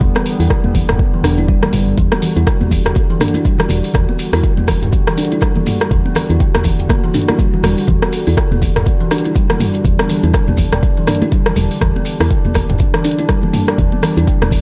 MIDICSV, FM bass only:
0, 0, Header, 1, 2, 480
1, 0, Start_track
1, 0, Key_signature, 1, "minor"
1, 0, Tempo, 491803
1, 12, Time_signature, 4, 2, 24, 8
1, 14259, End_track
2, 0, Start_track
2, 0, Title_t, "FM bass"
2, 0, Program_c, 0, 39
2, 9, Note_on_c, 0, 28, 94
2, 121, Note_off_c, 0, 28, 0
2, 387, Note_on_c, 0, 40, 77
2, 469, Note_off_c, 0, 40, 0
2, 627, Note_on_c, 0, 28, 95
2, 813, Note_off_c, 0, 28, 0
2, 868, Note_on_c, 0, 28, 78
2, 950, Note_off_c, 0, 28, 0
2, 1207, Note_on_c, 0, 28, 101
2, 1657, Note_off_c, 0, 28, 0
2, 1689, Note_on_c, 0, 31, 80
2, 1889, Note_off_c, 0, 31, 0
2, 1930, Note_on_c, 0, 28, 96
2, 2042, Note_off_c, 0, 28, 0
2, 2308, Note_on_c, 0, 40, 78
2, 2389, Note_off_c, 0, 40, 0
2, 2548, Note_on_c, 0, 28, 96
2, 2733, Note_off_c, 0, 28, 0
2, 2786, Note_on_c, 0, 28, 79
2, 2869, Note_off_c, 0, 28, 0
2, 3606, Note_on_c, 0, 28, 84
2, 3720, Note_off_c, 0, 28, 0
2, 3849, Note_on_c, 0, 28, 96
2, 3961, Note_off_c, 0, 28, 0
2, 4225, Note_on_c, 0, 40, 77
2, 4308, Note_off_c, 0, 40, 0
2, 4469, Note_on_c, 0, 28, 93
2, 4654, Note_off_c, 0, 28, 0
2, 4705, Note_on_c, 0, 28, 79
2, 4788, Note_off_c, 0, 28, 0
2, 5768, Note_on_c, 0, 28, 91
2, 5881, Note_off_c, 0, 28, 0
2, 6147, Note_on_c, 0, 40, 80
2, 6229, Note_off_c, 0, 40, 0
2, 6387, Note_on_c, 0, 28, 93
2, 6572, Note_off_c, 0, 28, 0
2, 6630, Note_on_c, 0, 28, 78
2, 6710, Note_off_c, 0, 28, 0
2, 7452, Note_on_c, 0, 28, 87
2, 7563, Note_off_c, 0, 28, 0
2, 7690, Note_on_c, 0, 28, 98
2, 7802, Note_off_c, 0, 28, 0
2, 8075, Note_on_c, 0, 40, 80
2, 8153, Note_off_c, 0, 40, 0
2, 8307, Note_on_c, 0, 28, 94
2, 8493, Note_off_c, 0, 28, 0
2, 8547, Note_on_c, 0, 28, 81
2, 8629, Note_off_c, 0, 28, 0
2, 9609, Note_on_c, 0, 28, 93
2, 9721, Note_off_c, 0, 28, 0
2, 9989, Note_on_c, 0, 40, 81
2, 10070, Note_off_c, 0, 40, 0
2, 10229, Note_on_c, 0, 28, 97
2, 10414, Note_off_c, 0, 28, 0
2, 10466, Note_on_c, 0, 28, 80
2, 10549, Note_off_c, 0, 28, 0
2, 11289, Note_on_c, 0, 28, 89
2, 11401, Note_off_c, 0, 28, 0
2, 11531, Note_on_c, 0, 28, 95
2, 11642, Note_off_c, 0, 28, 0
2, 11911, Note_on_c, 0, 40, 78
2, 11991, Note_off_c, 0, 40, 0
2, 12151, Note_on_c, 0, 28, 91
2, 12334, Note_off_c, 0, 28, 0
2, 12391, Note_on_c, 0, 28, 83
2, 12471, Note_off_c, 0, 28, 0
2, 13452, Note_on_c, 0, 28, 95
2, 13563, Note_off_c, 0, 28, 0
2, 13831, Note_on_c, 0, 40, 81
2, 13911, Note_off_c, 0, 40, 0
2, 14067, Note_on_c, 0, 28, 90
2, 14253, Note_off_c, 0, 28, 0
2, 14259, End_track
0, 0, End_of_file